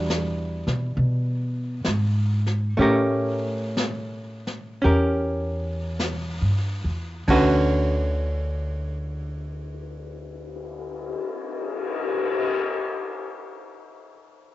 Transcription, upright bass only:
0, 0, Header, 1, 2, 480
1, 0, Start_track
1, 0, Key_signature, 2, "major"
1, 0, Tempo, 872093
1, 1024, Tempo, 931677
1, 1503, Time_signature, 4, 2, 24, 8
1, 1504, Tempo, 988468
1, 1984, Tempo, 1063830
1, 2464, Tempo, 1158301
1, 2944, Tempo, 1290323
1, 3424, Tempo, 1366743
1, 5972, End_track
2, 0, Start_track
2, 0, Title_t, "Upright bass"
2, 0, Program_c, 0, 32
2, 0, Note_on_c, 0, 40, 63
2, 350, Note_off_c, 0, 40, 0
2, 368, Note_on_c, 0, 47, 59
2, 520, Note_off_c, 0, 47, 0
2, 533, Note_on_c, 0, 47, 70
2, 1001, Note_off_c, 0, 47, 0
2, 1024, Note_on_c, 0, 44, 56
2, 1483, Note_off_c, 0, 44, 0
2, 1500, Note_on_c, 0, 45, 64
2, 2443, Note_off_c, 0, 45, 0
2, 2464, Note_on_c, 0, 40, 73
2, 3083, Note_off_c, 0, 40, 0
2, 3097, Note_on_c, 0, 43, 52
2, 3246, Note_off_c, 0, 43, 0
2, 3256, Note_on_c, 0, 40, 54
2, 3411, Note_off_c, 0, 40, 0
2, 3419, Note_on_c, 0, 38, 72
2, 4773, Note_off_c, 0, 38, 0
2, 5972, End_track
0, 0, End_of_file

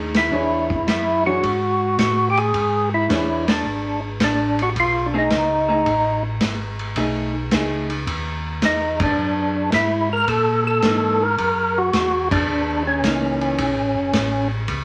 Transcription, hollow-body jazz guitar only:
0, 0, Header, 1, 2, 480
1, 0, Start_track
1, 0, Tempo, 552486
1, 282, Time_signature, 4, 2, 24, 8
1, 12896, End_track
2, 0, Start_track
2, 0, Title_t, "Hollow-body jazz guitar"
2, 0, Program_c, 0, 26
2, 0, Note_on_c, 0, 57, 36
2, 0, Note_on_c, 0, 63, 43
2, 0, Note_on_c, 0, 68, 45
2, 99, Note_off_c, 0, 57, 0
2, 102, Note_off_c, 0, 63, 0
2, 105, Note_off_c, 0, 68, 0
2, 278, Note_on_c, 0, 62, 49
2, 280, Note_on_c, 0, 52, 45
2, 288, Note_on_c, 0, 68, 51
2, 288, Note_on_c, 0, 73, 57
2, 580, Note_off_c, 0, 62, 0
2, 581, Note_off_c, 0, 52, 0
2, 585, Note_off_c, 0, 68, 0
2, 585, Note_off_c, 0, 73, 0
2, 1087, Note_on_c, 0, 52, 48
2, 1097, Note_on_c, 0, 62, 49
2, 1100, Note_on_c, 0, 68, 52
2, 1100, Note_on_c, 0, 73, 53
2, 1227, Note_off_c, 0, 52, 0
2, 1232, Note_off_c, 0, 62, 0
2, 1233, Note_off_c, 0, 68, 0
2, 1234, Note_off_c, 0, 73, 0
2, 2687, Note_on_c, 0, 52, 49
2, 2691, Note_on_c, 0, 62, 48
2, 2697, Note_on_c, 0, 68, 52
2, 2698, Note_on_c, 0, 73, 52
2, 2989, Note_off_c, 0, 52, 0
2, 2991, Note_off_c, 0, 62, 0
2, 2994, Note_off_c, 0, 68, 0
2, 2995, Note_off_c, 0, 73, 0
2, 4464, Note_on_c, 0, 57, 56
2, 4472, Note_on_c, 0, 63, 62
2, 4472, Note_on_c, 0, 68, 67
2, 4601, Note_off_c, 0, 57, 0
2, 4605, Note_off_c, 0, 63, 0
2, 4605, Note_off_c, 0, 68, 0
2, 4940, Note_on_c, 0, 57, 55
2, 4946, Note_on_c, 0, 63, 55
2, 4952, Note_on_c, 0, 68, 59
2, 5079, Note_off_c, 0, 57, 0
2, 5082, Note_off_c, 0, 63, 0
2, 5085, Note_off_c, 0, 68, 0
2, 6058, Note_on_c, 0, 63, 55
2, 6060, Note_on_c, 0, 57, 57
2, 6063, Note_on_c, 0, 68, 52
2, 6357, Note_off_c, 0, 63, 0
2, 6358, Note_off_c, 0, 57, 0
2, 6359, Note_off_c, 0, 68, 0
2, 6541, Note_on_c, 0, 57, 43
2, 6548, Note_on_c, 0, 63, 41
2, 6552, Note_on_c, 0, 68, 42
2, 6838, Note_off_c, 0, 57, 0
2, 6841, Note_off_c, 0, 63, 0
2, 6843, Note_off_c, 0, 68, 0
2, 9418, Note_on_c, 0, 52, 60
2, 9426, Note_on_c, 0, 58, 62
2, 9430, Note_on_c, 0, 63, 58
2, 9713, Note_off_c, 0, 52, 0
2, 9716, Note_off_c, 0, 58, 0
2, 9719, Note_off_c, 0, 63, 0
2, 11330, Note_on_c, 0, 52, 46
2, 11331, Note_on_c, 0, 58, 51
2, 11335, Note_on_c, 0, 63, 49
2, 11806, Note_off_c, 0, 52, 0
2, 11806, Note_off_c, 0, 58, 0
2, 11808, Note_off_c, 0, 63, 0
2, 12896, End_track
0, 0, End_of_file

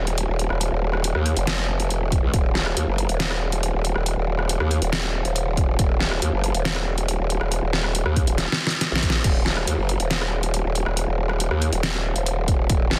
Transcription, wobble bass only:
0, 0, Header, 1, 2, 480
1, 0, Start_track
1, 0, Key_signature, -6, "minor"
1, 0, Tempo, 431655
1, 678, Time_signature, 4, 2, 24, 8
1, 14448, End_track
2, 0, Start_track
2, 0, Title_t, "Wobble bass"
2, 0, Program_c, 0, 39
2, 0, Note_on_c, 0, 27, 100
2, 299, Note_off_c, 0, 27, 0
2, 318, Note_on_c, 0, 27, 103
2, 539, Note_off_c, 0, 27, 0
2, 558, Note_on_c, 0, 27, 105
2, 779, Note_off_c, 0, 27, 0
2, 798, Note_on_c, 0, 27, 100
2, 1259, Note_off_c, 0, 27, 0
2, 1278, Note_on_c, 0, 39, 103
2, 1499, Note_off_c, 0, 39, 0
2, 1518, Note_on_c, 0, 29, 101
2, 2185, Note_off_c, 0, 29, 0
2, 2185, Note_on_c, 0, 28, 101
2, 2459, Note_off_c, 0, 28, 0
2, 2478, Note_on_c, 0, 37, 100
2, 2578, Note_off_c, 0, 37, 0
2, 2598, Note_on_c, 0, 27, 101
2, 3059, Note_off_c, 0, 27, 0
2, 3077, Note_on_c, 0, 39, 92
2, 3179, Note_off_c, 0, 39, 0
2, 3198, Note_on_c, 0, 30, 98
2, 3419, Note_off_c, 0, 30, 0
2, 3438, Note_on_c, 0, 27, 100
2, 4139, Note_off_c, 0, 27, 0
2, 4158, Note_on_c, 0, 27, 102
2, 4379, Note_off_c, 0, 27, 0
2, 4398, Note_on_c, 0, 27, 100
2, 4619, Note_off_c, 0, 27, 0
2, 4638, Note_on_c, 0, 27, 99
2, 5099, Note_off_c, 0, 27, 0
2, 5118, Note_on_c, 0, 39, 101
2, 5339, Note_off_c, 0, 39, 0
2, 5358, Note_on_c, 0, 27, 98
2, 5819, Note_off_c, 0, 27, 0
2, 5838, Note_on_c, 0, 27, 96
2, 6419, Note_off_c, 0, 27, 0
2, 6438, Note_on_c, 0, 27, 99
2, 6899, Note_off_c, 0, 27, 0
2, 6918, Note_on_c, 0, 39, 100
2, 7019, Note_off_c, 0, 39, 0
2, 7039, Note_on_c, 0, 30, 100
2, 7259, Note_off_c, 0, 30, 0
2, 7279, Note_on_c, 0, 27, 100
2, 7979, Note_off_c, 0, 27, 0
2, 7998, Note_on_c, 0, 27, 102
2, 8219, Note_off_c, 0, 27, 0
2, 8238, Note_on_c, 0, 27, 100
2, 8459, Note_off_c, 0, 27, 0
2, 8478, Note_on_c, 0, 27, 104
2, 8939, Note_off_c, 0, 27, 0
2, 8958, Note_on_c, 0, 39, 98
2, 9179, Note_off_c, 0, 39, 0
2, 9198, Note_on_c, 0, 27, 100
2, 9419, Note_off_c, 0, 27, 0
2, 9919, Note_on_c, 0, 34, 99
2, 10259, Note_off_c, 0, 34, 0
2, 10278, Note_on_c, 0, 27, 97
2, 10739, Note_off_c, 0, 27, 0
2, 10757, Note_on_c, 0, 39, 98
2, 10859, Note_off_c, 0, 39, 0
2, 10878, Note_on_c, 0, 30, 100
2, 11099, Note_off_c, 0, 30, 0
2, 11119, Note_on_c, 0, 27, 97
2, 11819, Note_off_c, 0, 27, 0
2, 11839, Note_on_c, 0, 27, 99
2, 12059, Note_off_c, 0, 27, 0
2, 12079, Note_on_c, 0, 27, 99
2, 12299, Note_off_c, 0, 27, 0
2, 12319, Note_on_c, 0, 27, 105
2, 12779, Note_off_c, 0, 27, 0
2, 12798, Note_on_c, 0, 39, 102
2, 13019, Note_off_c, 0, 39, 0
2, 13038, Note_on_c, 0, 27, 98
2, 13499, Note_off_c, 0, 27, 0
2, 13519, Note_on_c, 0, 27, 99
2, 14099, Note_off_c, 0, 27, 0
2, 14118, Note_on_c, 0, 27, 100
2, 14448, Note_off_c, 0, 27, 0
2, 14448, End_track
0, 0, End_of_file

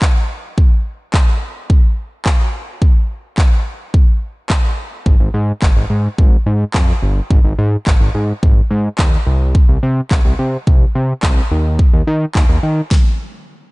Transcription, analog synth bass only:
0, 0, Header, 1, 2, 480
1, 0, Start_track
1, 0, Key_signature, -4, "major"
1, 0, Tempo, 560748
1, 493, Time_signature, 4, 2, 24, 8
1, 11742, End_track
2, 0, Start_track
2, 0, Title_t, "Analog synth bass"
2, 0, Program_c, 0, 38
2, 4333, Note_on_c, 0, 32, 102
2, 4411, Note_off_c, 0, 32, 0
2, 4452, Note_on_c, 0, 32, 92
2, 4530, Note_off_c, 0, 32, 0
2, 4572, Note_on_c, 0, 44, 97
2, 4728, Note_off_c, 0, 44, 0
2, 4813, Note_on_c, 0, 32, 105
2, 4891, Note_off_c, 0, 32, 0
2, 4931, Note_on_c, 0, 32, 96
2, 5009, Note_off_c, 0, 32, 0
2, 5050, Note_on_c, 0, 44, 92
2, 5207, Note_off_c, 0, 44, 0
2, 5294, Note_on_c, 0, 32, 103
2, 5450, Note_off_c, 0, 32, 0
2, 5532, Note_on_c, 0, 44, 96
2, 5688, Note_off_c, 0, 44, 0
2, 5774, Note_on_c, 0, 41, 102
2, 5930, Note_off_c, 0, 41, 0
2, 6013, Note_on_c, 0, 31, 87
2, 6169, Note_off_c, 0, 31, 0
2, 6253, Note_on_c, 0, 32, 114
2, 6331, Note_off_c, 0, 32, 0
2, 6372, Note_on_c, 0, 32, 100
2, 6450, Note_off_c, 0, 32, 0
2, 6493, Note_on_c, 0, 44, 106
2, 6649, Note_off_c, 0, 44, 0
2, 6735, Note_on_c, 0, 32, 100
2, 6812, Note_off_c, 0, 32, 0
2, 6851, Note_on_c, 0, 32, 93
2, 6930, Note_off_c, 0, 32, 0
2, 6974, Note_on_c, 0, 44, 88
2, 7130, Note_off_c, 0, 44, 0
2, 7216, Note_on_c, 0, 32, 108
2, 7371, Note_off_c, 0, 32, 0
2, 7452, Note_on_c, 0, 44, 105
2, 7609, Note_off_c, 0, 44, 0
2, 7695, Note_on_c, 0, 39, 93
2, 7850, Note_off_c, 0, 39, 0
2, 7932, Note_on_c, 0, 36, 95
2, 8166, Note_off_c, 0, 36, 0
2, 8293, Note_on_c, 0, 36, 93
2, 8371, Note_off_c, 0, 36, 0
2, 8414, Note_on_c, 0, 48, 105
2, 8569, Note_off_c, 0, 48, 0
2, 8654, Note_on_c, 0, 36, 102
2, 8732, Note_off_c, 0, 36, 0
2, 8774, Note_on_c, 0, 36, 97
2, 8852, Note_off_c, 0, 36, 0
2, 8894, Note_on_c, 0, 48, 92
2, 9050, Note_off_c, 0, 48, 0
2, 9134, Note_on_c, 0, 36, 98
2, 9290, Note_off_c, 0, 36, 0
2, 9376, Note_on_c, 0, 48, 90
2, 9531, Note_off_c, 0, 48, 0
2, 9614, Note_on_c, 0, 36, 99
2, 9770, Note_off_c, 0, 36, 0
2, 9855, Note_on_c, 0, 39, 97
2, 10089, Note_off_c, 0, 39, 0
2, 10216, Note_on_c, 0, 39, 92
2, 10293, Note_off_c, 0, 39, 0
2, 10334, Note_on_c, 0, 51, 103
2, 10490, Note_off_c, 0, 51, 0
2, 10574, Note_on_c, 0, 39, 103
2, 10652, Note_off_c, 0, 39, 0
2, 10692, Note_on_c, 0, 39, 99
2, 10770, Note_off_c, 0, 39, 0
2, 10812, Note_on_c, 0, 51, 98
2, 10969, Note_off_c, 0, 51, 0
2, 11742, End_track
0, 0, End_of_file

